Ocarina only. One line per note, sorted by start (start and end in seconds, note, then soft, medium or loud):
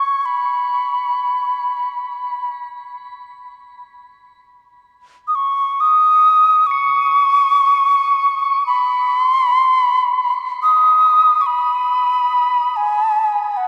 0.00 0.27 C#6 medium
0.25 2.51 B5 medium
5.28 5.37 D#6 medium
5.35 5.82 C#6 medium
5.80 6.68 D#6 medium
6.67 8.66 C#6 medium
8.67 9.26 B5 medium
9.26 9.42 C6 medium
9.42 9.59 B5 medium
9.59 9.75 C6 medium
9.75 10.33 B5 medium
10.63 11.43 D#6 medium
11.41 11.48 C#6 medium
11.46 12.78 B5 medium
12.76 13.52 G#5 medium
13.52 13.59 G#5 medium
13.57 13.68 F#5 medium